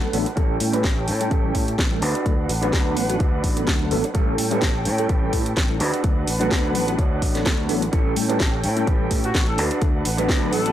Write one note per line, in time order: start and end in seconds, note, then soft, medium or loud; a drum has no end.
0.00 0.11 F#3 medium
0.00 0.11 A3 medium
0.00 0.11 B3 medium
0.00 0.11 D4 medium
0.00 0.35 D4 medium
0.00 0.11 A4 medium
0.00 0.35 B4 medium
0.00 0.35 F#5 medium
0.13 0.24 A1 medium
0.13 0.25 F#3 loud
0.13 0.26 A3 medium
0.13 0.26 B3 medium
0.13 0.26 D4 medium
0.13 0.26 A4 loud
0.13 open hi-hat medium
0.25 muted clean electric guitar stroke medium
0.25 closed hi-hat medium
0.36 0.57 A1 loud
0.36 0.70 G3 medium
0.36 0.70 A3 medium
0.36 0.55 C#4 loud
0.36 0.70 C#4 medium
0.36 2.01 C#4 medium
0.36 0.71 E4 medium
0.36 0.55 G4 loud
0.36 2.01 A4 medium
0.36 0.71 A4 loud
0.36 0.56 A4 loud
0.36 2.01 G5 medium
0.36 kick loud
0.36 closed hi-hat soft
0.60 0.86 A2 medium
0.60 open hi-hat loud
0.73 0.83 G3 loud
0.73 0.83 A3 medium
0.73 1.02 C#4 medium
0.73 0.83 C#4 medium
0.73 0.83 E4 medium
0.73 1.03 G4 medium
0.73 0.84 B4 loud
0.73 1.03 B4 medium
0.73 closed hi-hat medium
0.84 1.09 A1 medium
0.84 kick loud
0.84 snare loud
0.84 closed hi-hat soft
1.08 1.28 A2 medium
1.08 open hi-hat medium
1.20 1.52 G3 medium
1.20 1.52 A3 medium
1.20 1.52 C#4 medium
1.20 1.53 E4 medium
1.20 1.53 A4 medium
1.20 closed hi-hat medium
1.30 1.51 A1 medium
1.30 1.73 C#4 medium
1.30 1.73 G4 medium
1.30 1.74 A4 medium
1.30 kick loud
1.30 closed hi-hat soft
1.54 1.75 A2 medium
1.54 1.62 G3 medium
1.54 1.62 A3 medium
1.54 1.62 C#4 medium
1.54 1.63 E4 medium
1.54 1.63 A4 medium
1.54 kick medium
1.54 open hi-hat loud
1.68 closed hi-hat medium
1.79 2.02 A1 medium
1.79 kick loud
1.79 snare loud
1.79 closed hi-hat soft
1.91 1.98 G3 medium
1.91 1.98 A3 medium
1.91 1.98 C#4 medium
1.91 1.98 E4 medium
1.91 1.98 A4 medium
2.01 2.13 D2 medium
2.01 2.49 D4 medium
2.01 4.13 D4 medium
2.01 2.49 F#4 medium
2.01 4.13 B4 medium
2.01 2.50 B4 loud
2.01 4.13 F#5 medium
2.01 open hi-hat medium
2.15 closed hi-hat medium
2.25 2.46 D2 loud
2.25 2.33 F#3 medium
2.25 2.33 A3 medium
2.25 2.33 B3 medium
2.25 2.34 D4 medium
2.25 2.34 A4 medium
2.25 kick loud
2.25 closed hi-hat medium
2.49 2.73 A1 medium
2.49 open hi-hat loud
2.61 3.07 F#3 medium
2.61 3.07 A3 medium
2.61 3.07 B3 medium
2.61 2.91 D4 medium
2.61 3.07 D4 medium
2.61 2.91 F#4 medium
2.61 3.07 B4 loud
2.61 2.92 B4 medium
2.61 closed hi-hat medium
2.73 2.96 D2 medium
2.73 kick loud
2.73 snare loud
2.73 closed hi-hat medium
2.96 3.17 A1 medium
2.96 open hi-hat medium
3.09 3.16 F#3 medium
3.09 3.16 A3 medium
3.09 3.16 B3 medium
3.09 3.16 D4 medium
3.09 3.16 F#4 medium
3.09 closed hi-hat medium
3.19 3.62 D4 medium
3.19 3.62 F#4 medium
3.19 3.63 B4 medium
3.19 kick loud
3.19 closed hi-hat soft
3.44 3.64 A1 medium
3.44 kick medium
3.44 open hi-hat medium
3.56 3.88 F#3 medium
3.56 3.88 A3 medium
3.56 3.89 B3 medium
3.56 3.89 D4 medium
3.56 3.89 A4 loud
3.56 closed hi-hat medium
3.67 3.93 D2 medium
3.67 kick loud
3.67 snare loud
3.67 closed hi-hat medium
3.91 4.02 A1 medium
3.91 4.03 F#3 loud
3.91 4.03 A3 medium
3.91 4.03 B3 medium
3.91 4.04 D4 medium
3.91 4.04 A4 loud
3.91 open hi-hat medium
4.03 muted clean electric guitar stroke medium
4.03 closed hi-hat medium
4.14 4.35 A1 loud
4.14 4.48 G3 medium
4.14 4.48 A3 medium
4.14 4.33 C#4 loud
4.14 5.79 C#4 medium
4.14 4.48 C#4 medium
4.14 4.48 E4 medium
4.14 4.33 G4 loud
4.14 5.78 A4 medium
4.14 4.49 A4 loud
4.14 4.34 A4 loud
4.14 5.79 G5 medium
4.14 kick loud
4.14 closed hi-hat medium
4.38 4.64 A2 medium
4.38 open hi-hat loud
4.51 4.61 G3 medium
4.51 4.61 A3 medium
4.51 4.80 C#4 medium
4.51 4.61 C#4 medium
4.51 4.61 E4 medium
4.51 4.80 G4 medium
4.51 4.81 A4 loud
4.51 4.61 B4 loud
4.51 closed hi-hat medium
4.62 4.87 A1 medium
4.62 kick loud
4.62 snare loud
4.62 closed hi-hat medium
4.85 5.06 A2 medium
4.85 open hi-hat medium
4.98 5.30 G3 medium
4.98 5.31 A3 medium
4.98 5.31 C#4 medium
4.98 5.31 E4 medium
4.98 5.31 A4 medium
4.98 closed hi-hat medium
5.08 5.29 A1 medium
5.08 5.51 C#4 medium
5.08 5.51 G4 medium
5.08 5.52 B4 loud
5.08 kick loud
5.08 closed hi-hat medium
5.33 5.53 A2 medium
5.33 5.40 G3 medium
5.33 5.41 A3 medium
5.33 5.41 C#4 medium
5.33 5.41 E4 medium
5.33 5.41 A4 medium
5.33 kick medium
5.33 open hi-hat loud
5.46 closed hi-hat medium
5.57 5.80 A1 medium
5.57 kick loud
5.57 snare loud
5.57 closed hi-hat medium
5.70 5.76 G3 medium
5.70 5.76 A3 medium
5.70 5.76 C#4 medium
5.70 5.76 E4 medium
5.70 5.76 A4 medium
5.79 5.91 D2 medium
5.79 6.27 D4 medium
5.79 7.91 D4 medium
5.79 6.28 F#4 medium
5.79 7.91 B4 medium
5.79 6.28 B4 loud
5.79 7.91 F#5 medium
5.79 open hi-hat medium
5.94 closed hi-hat medium
6.03 6.24 D2 medium
6.03 6.11 F#3 medium
6.03 6.11 A3 medium
6.03 6.11 B3 medium
6.03 6.12 D4 medium
6.03 6.12 A4 medium
6.03 kick loud
6.03 closed hi-hat medium
6.27 6.51 A1 medium
6.27 open hi-hat loud
6.39 6.85 F#3 loud
6.39 6.85 A3 medium
6.39 6.85 B3 medium
6.39 6.69 D4 medium
6.39 6.85 D4 medium
6.39 6.69 F#4 medium
6.39 6.70 A4 medium
6.39 6.85 B4 loud
6.39 closed hi-hat medium
6.51 6.75 D2 medium
6.51 kick loud
6.51 snare loud
6.51 closed hi-hat medium
6.75 6.95 A1 medium
6.75 open hi-hat medium
6.87 6.94 F#3 medium
6.87 6.94 A3 medium
6.87 6.94 B3 medium
6.87 6.94 D4 medium
6.87 6.94 F#4 medium
6.87 closed hi-hat medium
6.97 7.18 D2 medium
6.97 7.40 D4 medium
6.97 7.40 F#4 medium
6.97 7.41 C#5 medium
6.97 kick loud
6.97 closed hi-hat medium
7.22 7.46 A1 medium
7.22 kick medium
7.22 open hi-hat medium
7.35 7.67 F#3 medium
7.35 7.67 A3 medium
7.35 7.67 B3 medium
7.35 7.67 D4 medium
7.35 7.67 A4 medium
7.35 snare soft
7.35 closed hi-hat medium
7.46 7.69 D2 medium
7.46 kick loud
7.46 snare loud
7.46 closed hi-hat medium
7.69 7.89 A1 medium
7.69 7.81 F#3 loud
7.69 7.81 A3 medium
7.69 7.81 B3 medium
7.69 7.81 D4 medium
7.69 7.81 A4 loud
7.69 open hi-hat medium
7.81 muted clean electric guitar stroke medium
7.81 closed hi-hat medium
7.92 8.13 A1 medium
7.92 8.26 G3 medium
7.92 8.26 A3 medium
7.92 8.11 C#4 loud
7.92 9.57 C#4 medium
7.92 8.27 C#4 medium
7.92 8.26 E4 medium
7.92 8.11 G4 loud
7.92 9.56 A4 medium
7.92 8.27 A4 medium
7.92 8.12 A4 loud
7.92 9.57 G5 medium
7.92 kick loud
7.92 closed hi-hat medium
8.16 8.42 A2 medium
8.16 open hi-hat loud
8.29 8.39 G3 medium
8.29 8.39 A3 medium
8.29 8.58 C#4 medium
8.29 8.39 C#4 medium
8.29 8.39 E4 medium
8.29 8.58 G4 medium
8.29 8.59 A4 loud
8.29 8.39 B4 loud
8.29 closed hi-hat medium
8.40 8.65 A1 medium
8.40 kick loud
8.40 snare loud
8.40 closed hi-hat medium
8.64 8.84 A2 medium
8.64 open hi-hat medium
8.76 9.08 G3 medium
8.76 9.08 A3 medium
8.76 9.08 C#4 medium
8.76 9.08 E4 medium
8.76 9.09 A4 medium
8.76 closed hi-hat medium
8.86 9.07 A1 medium
8.86 9.29 C#4 medium
8.86 9.29 G4 medium
8.86 9.30 B4 medium
8.86 kick loud
8.86 closed hi-hat medium
9.10 9.31 A2 medium
9.10 9.18 G3 medium
9.10 9.18 A3 medium
9.10 9.18 C#4 medium
9.10 9.19 E4 medium
9.10 9.19 A4 medium
9.10 kick medium
9.10 open hi-hat loud
9.24 9.45 F#4 medium
9.24 closed hi-hat medium
9.35 9.58 A1 medium
9.35 kick loud
9.35 snare loud
9.35 closed hi-hat medium
9.47 9.53 G3 medium
9.47 9.54 A3 medium
9.47 9.54 C#4 medium
9.47 9.54 E4 medium
9.47 9.63 A4 medium
9.47 9.54 A4 medium
9.57 9.69 D2 medium
9.57 10.05 D4 medium
9.57 10.72 D4 medium
9.57 10.05 F#4 medium
9.57 10.72 B4 medium
9.57 10.06 B4 loud
9.57 10.72 F#5 medium
9.57 open hi-hat medium
9.71 closed hi-hat medium
9.81 10.02 D2 medium
9.81 9.89 F#3 medium
9.81 9.89 A3 medium
9.81 9.89 B3 medium
9.81 9.89 D4 medium
9.81 9.89 A4 medium
9.81 kick loud
9.81 closed hi-hat medium
10.05 10.29 A1 medium
10.05 open hi-hat loud
10.17 10.62 F#3 loud
10.17 10.62 A3 medium
10.17 10.63 B3 medium
10.17 10.47 D4 medium
10.17 10.63 D4 medium
10.17 10.47 F#4 medium
10.17 10.63 B4 loud
10.17 10.48 B4 loud
10.17 closed hi-hat medium
10.29 10.53 D2 medium
10.29 kick loud
10.29 snare loud
10.29 closed hi-hat medium
10.53 10.72 A1 medium
10.53 10.72 A4 loud
10.53 open hi-hat medium
10.65 10.72 F#3 medium
10.65 10.72 A3 medium
10.65 10.72 B3 medium
10.65 10.72 D4 medium
10.65 10.72 F#4 medium
10.65 closed hi-hat medium